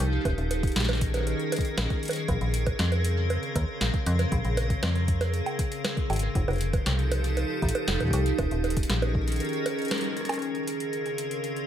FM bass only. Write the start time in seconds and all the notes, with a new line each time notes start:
0.00 C2
0.25 D#1
0.38 D#1
0.76 A#1
1.78 A#1
2.29 A#1
2.41 A#1
2.79 F2
3.56 D#2
3.81 A#1
4.07 F2
4.32 A#1
4.45 A#1
4.83 F2
6.10 G#1
6.35 F1
6.48 F1
6.86 C2
7.62 A1
7.88 F1
8.13 C2
8.39 D#1
8.51 D#1
8.90 A#1